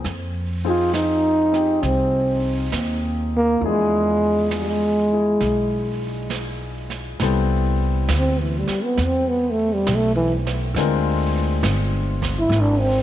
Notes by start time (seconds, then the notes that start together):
0.04 F2, brush sweep, snare
0.64 F3 C4 D#4 F4 G#4
0.94 D#4, snare, hi-hat pedal
1.52 C4 G4, snare
1.83 C2 C4, brush sweep, snare
2.72 D#2, snare, hi-hat pedal
3.37 A#3
3.60 E2 F3 D4 E4, brush sweep
3.66 G#3 G#4
4.51 snare, hi-hat pedal
4.61 G#3
5.11 E4 G#4
5.40 B1, brush sweep, snare
6.30 snare, hi-hat pedal
6.90 snare
7.20 C2 G3 B3 C4 E4 A4, brush sweep, snare
8.09 D2, snare, hi-hat pedal
8.19 C4
8.40 E3
8.59 G3
8.68 muted upright bass stroke, snare
8.84 B3
8.98 E2, brush sweep, snare
9.06 C4
9.28 B3
9.51 A3
9.73 G3
9.87 B1, snare, hi-hat pedal
9.95 A3
10.16 E3
10.47 snare
10.74 D2 G#3 C4 D4 F4 A#4, brush sweep, snare
11.63 G1, snare, hi-hat pedal
12.22 kick, snare
12.39 E4
12.49 G#1, brush sweep, snare
12.61 D4
12.80 C4